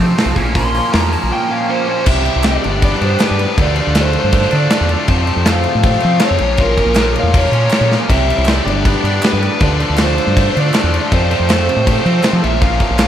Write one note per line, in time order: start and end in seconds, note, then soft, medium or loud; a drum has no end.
0.00 0.16 F2 medium
0.00 0.16 C3 medium
0.00 0.13 F3 loud
0.00 0.17 F3 medium
0.00 0.17 A3 medium
0.00 0.17 C4 medium
0.00 0.18 F4 medium
0.17 0.35 F2 loud
0.17 0.35 C3 loud
0.17 0.35 F3 loud
0.17 0.36 A3 loud
0.17 0.36 C4 loud
0.17 0.36 F4 loud
0.17 snare loud
0.17 open hi-hat medium
0.26 0.33 B1 medium
0.36 0.79 A#1 medium
0.36 0.54 A#2 medium
0.36 0.55 F3 medium
0.36 0.55 A#3 medium
0.36 0.56 C#4 loud
0.36 0.56 F4 medium
0.36 kick medium
0.36 open hi-hat soft
0.55 0.73 A#2 loud
0.55 0.74 F3 medium
0.55 0.74 A#3 loud
0.55 0.75 C#4 medium
0.55 0.75 F4 loud
0.55 0.92 C6 loud
0.55 kick loud
0.55 open hi-hat medium
0.74 0.91 A#2 medium
0.74 0.92 F3 medium
0.74 0.92 A#3 medium
0.74 0.93 C#4 medium
0.74 0.94 F4 medium
0.74 open hi-hat medium
0.92 1.15 E2 medium
0.92 1.09 A#2 medium
0.92 1.10 F3 loud
0.92 1.10 A#3 medium
0.92 1.11 C#4 loud
0.92 1.11 F4 loud
0.92 1.12 A#5 medium
0.92 snare loud
0.92 open hi-hat medium
1.10 1.29 A#2 medium
1.10 1.29 F3 loud
1.10 1.30 A#3 medium
1.10 1.30 C#4 medium
1.10 1.31 F4 loud
1.10 1.31 A5 medium
1.10 open hi-hat medium
1.23 1.30 A#1 medium
1.30 1.48 A#2 loud
1.30 1.49 F3 medium
1.30 1.50 A#3 medium
1.30 1.50 C#4 loud
1.30 1.50 F4 medium
1.30 1.51 G5 medium
1.50 1.67 A#2 medium
1.50 1.68 F3 medium
1.50 1.68 A#3 medium
1.50 1.68 C#4 medium
1.50 1.69 F4 medium
1.50 1.69 F5 medium
1.68 1.86 A#2 loud
1.68 1.87 F3 loud
1.68 1.87 A#3 loud
1.68 1.88 C#4 loud
1.68 1.88 F4 loud
1.68 1.87 C5 medium
1.87 2.05 A#2 medium
1.87 2.06 F3 medium
1.87 2.06 A#3 medium
1.87 2.06 C#4 loud
1.87 2.06 F4 medium
1.87 2.06 C5 medium
2.05 2.28 C2 loud
2.05 2.44 C3 loud
2.05 2.42 E3 medium
2.05 2.27 G3 loud
2.05 2.25 E4 loud
2.05 3.57 G4 medium
2.05 2.23 G4 loud
2.05 2.46 E5 loud
2.05 2.63 E5 medium
2.05 2.64 C6 medium
2.05 kick loud
2.05 crash loud
2.05 crash medium
2.25 2.44 G3 medium
2.25 2.45 E4 medium
2.25 2.45 G4 medium
2.25 crash medium
2.36 2.57 C2 medium
2.43 2.62 E3 medium
2.43 2.62 G3 medium
2.43 2.63 C4 medium
2.43 2.63 E4 medium
2.43 2.62 G4 medium
2.43 2.83 D5 loud
2.43 snare loud
2.43 clap loud
2.43 crash medium
2.63 2.93 G1 loud
2.63 3.18 G2 medium
2.63 3.19 D3 medium
2.63 3.03 G3 medium
2.63 3.02 B3 loud
2.63 3.01 D4 medium
2.63 2.99 G4 medium
2.63 5.06 D5 medium
2.63 3.57 B5 medium
2.63 crash medium
2.81 3.19 B3 medium
2.81 3.02 D5 loud
2.81 kick loud
2.81 crash medium
2.93 snare soft
3.00 3.15 G2 medium
3.00 3.20 G3 medium
3.00 3.20 B3 medium
3.00 3.21 D4 medium
3.00 3.21 G4 medium
3.00 3.21 C5 medium
3.00 crash medium
3.19 3.56 G2 loud
3.19 3.56 D3 loud
3.19 3.40 G3 loud
3.19 3.39 B3 loud
3.19 3.37 D4 loud
3.19 3.36 G4 loud
3.19 snare loud
3.19 clap loud
3.19 crash medium
3.23 3.57 B4 medium
3.31 3.44 G2 medium
3.37 3.57 G3 medium
3.37 3.57 B3 medium
3.37 3.56 D4 medium
3.37 3.56 G4 medium
3.37 crash medium
3.57 3.79 D2 loud
3.57 3.94 D3 loud
3.57 3.79 A3 loud
3.57 3.77 D4 loud
3.57 8.06 F4 medium
3.57 6.37 A5 medium
3.57 kick loud
3.57 crash medium
3.61 3.76 F4 loud
3.61 3.99 D5 loud
3.76 4.88 F3 medium
3.76 3.96 A3 medium
3.76 3.96 D4 medium
3.76 3.98 F4 medium
3.76 crash medium
3.87 4.15 D2 medium
3.95 4.69 D3 medium
3.95 4.53 A3 medium
3.95 4.51 D4 medium
3.95 4.50 F4 medium
3.95 snare loud
3.95 clap loud
3.95 crash medium
4.01 4.17 C5 loud
4.13 5.09 D3 medium
4.13 crash medium
4.19 4.55 C5 loud
4.24 4.45 G2 medium
4.32 4.68 A3 medium
4.32 kick loud
4.32 crash medium
4.42 snare soft
4.51 4.66 D3 medium
4.51 4.70 A3 medium
4.51 4.71 D4 medium
4.51 4.73 F4 medium
4.51 crash medium
4.55 4.89 D5 loud
4.70 5.07 D3 loud
4.70 4.91 A3 loud
4.70 4.89 D4 loud
4.70 4.89 F4 loud
4.70 snare loud
4.70 clap loud
4.70 crash medium
4.81 4.95 E2 medium
4.89 5.27 F3 medium
4.89 5.08 A3 medium
4.89 5.08 D4 medium
4.89 5.10 F4 medium
4.89 crash medium
5.07 5.45 F2 loud
5.07 5.30 F2 loud
5.07 5.46 C3 loud
5.07 5.31 F3 loud
5.07 5.29 A3 loud
5.07 5.28 C4 loud
5.07 5.27 F4 loud
5.07 6.39 C5 medium
5.07 5.48 A5 loud
5.07 kick loud
5.07 crash medium
5.27 6.21 F3 medium
5.27 5.47 A3 medium
5.27 5.47 C4 medium
5.27 5.49 F4 medium
5.27 crash medium
5.31 5.46 F3 medium
5.36 5.65 F2 medium
5.45 6.04 F3 medium
5.45 6.04 A3 medium
5.45 6.02 C4 medium
5.45 snare loud
5.45 clap loud
5.45 crash medium
5.49 6.01 F4 medium
5.49 5.86 F5 loud
5.64 6.41 C3 medium
5.64 crash medium
5.75 5.96 A2 medium
5.83 6.22 A3 medium
5.83 6.20 F5 loud
5.83 kick loud
5.83 crash medium
5.93 snare soft
6.00 6.21 C4 medium
6.00 6.22 F4 medium
6.00 crash medium
6.04 6.18 F3 medium
6.04 6.21 F3 medium
6.04 6.21 A3 medium
6.20 6.38 F2 loud
6.20 6.39 C3 loud
6.20 6.39 F3 loud
6.20 6.40 A3 loud
6.20 6.40 C4 loud
6.20 6.38 F4 loud
6.20 snare loud
6.20 clap loud
6.20 crash medium
6.25 6.62 C#5 medium
6.31 6.38 F2 medium
6.39 6.76 A#1 loud
6.39 6.56 A#2 medium
6.39 6.57 F3 medium
6.39 6.58 A#3 medium
6.39 6.59 C#4 medium
6.39 6.59 F4 medium
6.39 8.08 C#5 medium
6.39 8.08 A#5 medium
6.39 crash medium
6.57 6.96 A#2 loud
6.57 6.95 F3 loud
6.57 6.79 A#3 loud
6.57 6.78 C#4 loud
6.57 6.75 F4 loud
6.57 6.97 A#4 loud
6.57 kick loud
6.57 crash medium
6.77 7.72 F3 medium
6.77 6.96 A#3 medium
6.77 6.97 C#4 medium
6.77 6.98 F4 medium
6.77 kick medium
6.77 crash medium
6.86 7.15 A#1 medium
6.95 7.69 F3 medium
6.95 7.54 A#3 medium
6.95 7.52 C#4 medium
6.95 7.50 F4 medium
6.95 7.04 A#4 medium
6.95 snare loud
6.95 clap loud
6.95 crash medium
7.15 8.10 A#2 medium
7.15 crash medium
7.20 7.45 E2 medium
7.20 7.37 F5 loud
7.34 7.71 A#3 medium
7.34 7.89 C#5 medium
7.34 kick loud
7.34 crash loud
7.45 snare soft
7.51 7.66 A#2 medium
7.51 7.70 A#3 medium
7.51 7.71 C#4 medium
7.51 7.72 F4 medium
7.51 crash medium
7.69 8.07 A#2 loud
7.69 8.08 F3 loud
7.69 7.91 A#3 loud
7.69 7.90 C#4 loud
7.69 7.89 F4 loud
7.69 snare loud
7.69 clap loud
7.69 crash medium
7.81 7.95 A#2 medium
7.90 8.10 F3 medium
7.90 8.09 A#3 medium
7.90 8.09 C#4 medium
7.90 8.08 F4 medium
7.90 snare medium
8.08 8.31 C2 loud
8.08 8.47 C3 medium
8.08 8.45 E3 medium
8.08 8.29 G3 medium
8.08 8.27 C4 loud
8.08 8.26 E4 loud
8.08 9.59 G4 medium
8.08 8.66 E5 medium
8.08 8.49 E5 loud
8.08 8.65 C6 medium
8.08 kick loud
8.08 crash loud
8.27 8.46 G3 medium
8.27 8.47 C4 medium
8.27 8.48 E4 medium
8.27 crash medium
8.38 8.59 C2 medium
8.45 8.64 E3 medium
8.45 8.65 G3 medium
8.45 8.65 C4 medium
8.45 8.64 E4 medium
8.45 snare loud
8.45 clap medium
8.45 crash loud
8.50 8.66 D5 loud
8.65 8.95 G1 loud
8.65 9.20 G2 medium
8.65 9.21 D3 medium
8.65 9.05 G3 medium
8.65 9.04 B3 medium
8.65 9.03 D4 loud
8.65 9.02 G4 loud
8.65 11.09 D5 medium
8.65 9.61 B5 medium
8.65 crash medium
8.70 8.86 D5 medium
8.85 9.21 B3 medium
8.85 9.21 D5 medium
8.85 kick loud
8.85 crash medium
9.03 9.18 G2 medium
9.03 9.22 G3 medium
9.03 9.22 B3 medium
9.03 9.23 D4 medium
9.03 9.23 G4 medium
9.03 crash medium
9.22 9.59 G2 medium
9.22 9.58 D3 loud
9.22 9.43 G3 loud
9.22 9.42 B3 loud
9.22 9.40 D4 loud
9.22 9.39 G4 loud
9.22 snare loud
9.22 clap loud
9.22 crash medium
9.26 9.63 B4 medium
9.33 9.47 G2 medium
9.41 9.59 G3 medium
9.41 9.60 B3 medium
9.41 9.59 D4 medium
9.41 9.59 G4 medium
9.41 crash medium
9.60 9.82 D2 loud
9.60 9.96 D3 loud
9.60 9.82 A3 loud
9.60 9.80 D4 loud
9.60 13.08 F4 medium
9.60 9.78 F4 loud
9.60 10.01 D5 loud
9.60 12.41 A5 medium
9.60 kick loud
9.60 crash medium
9.79 10.91 F3 medium
9.79 9.99 A3 medium
9.79 9.99 D4 medium
9.79 10.00 F4 medium
9.79 crash medium
9.90 10.18 D2 medium
9.97 10.72 D3 medium
9.97 10.57 A3 medium
9.97 10.55 D4 medium
9.97 10.54 F4 medium
9.97 snare loud
9.97 clap loud
9.97 crash medium
10.02 10.39 C5 loud
10.18 11.12 D3 medium
10.18 crash medium
10.27 10.48 G2 medium
10.36 10.74 A3 medium
10.36 10.49 C5 medium
10.36 kick loud
10.36 crash medium
10.50 10.56 C5 medium
10.54 10.70 D3 medium
10.54 10.73 A3 medium
10.54 10.74 D4 medium
10.54 10.76 F4 medium
10.54 crash medium
10.60 10.93 D5 loud
10.73 11.10 D3 loud
10.73 10.94 A3 loud
10.73 10.93 D4 loud
10.73 10.92 F4 loud
10.73 snare loud
10.73 clap loud
10.73 crash loud
10.84 10.98 E2 medium
10.92 11.30 F3 medium
10.92 11.11 A3 medium
10.92 11.11 D4 medium
10.92 11.15 F4 medium
10.92 crash medium
11.11 11.49 F2 medium
11.11 11.33 F2 loud
11.11 11.49 C3 loud
11.11 11.33 F3 loud
11.11 11.31 A3 loud
11.11 11.30 C4 loud
11.11 11.30 F4 loud
11.11 12.42 C5 medium
11.11 11.49 C5 medium
11.11 kick loud
11.11 crash medium
11.30 11.49 F3 medium
11.30 11.49 A3 medium
11.30 11.50 C4 medium
11.30 11.52 F4 medium
11.30 crash medium
11.40 11.68 F2 medium
11.49 12.07 F3 medium
11.49 12.05 A3 medium
11.49 12.04 C4 medium
11.49 12.04 F4 medium
11.49 11.85 C5 loud
11.49 snare loud
11.49 clap medium
11.49 crash loud
11.68 12.43 C3 medium
11.68 crash medium
11.76 11.98 A2 loud
11.87 12.22 A3 medium
11.87 12.23 C5 loud
11.87 kick loud
11.87 crash loud
12.05 12.20 F3 loud
12.05 12.24 F3 medium
12.05 12.25 A3 medium
12.05 12.25 C4 medium
12.05 12.25 F4 medium
12.05 crash medium
12.23 12.42 F2 loud
12.23 12.42 C3 loud
12.23 12.42 F3 loud
12.23 12.43 A3 loud
12.23 12.43 C4 loud
12.23 12.42 F4 loud
12.23 snare loud
12.23 clap loud
12.23 crash medium
12.33 12.40 F3 medium
12.43 12.79 A#1 loud
12.43 12.59 A#2 medium
12.43 12.61 F3 medium
12.43 12.61 A#3 medium
12.43 12.62 C#4 medium
12.43 12.63 F4 loud
12.43 13.08 C#5 medium
12.43 12.61 E5 medium
12.43 13.08 A#5 medium
12.43 crash medium
12.61 12.99 A#2 medium
12.61 12.98 F3 loud
12.61 12.82 A#3 loud
12.61 12.80 C#4 loud
12.61 12.78 F4 loud
12.61 13.08 F5 loud
12.61 kick loud
12.61 crash medium
12.80 13.08 F3 medium
12.80 12.99 A#3 medium
12.80 13.00 C#4 medium
12.80 13.01 F4 medium
12.80 kick medium
12.80 crash medium
12.90 13.08 A#1 medium
12.99 13.08 F3 medium
12.99 13.08 A#3 medium
12.99 13.08 C#4 medium
12.99 13.08 F4 medium
12.99 snare loud
12.99 clap loud
12.99 crash medium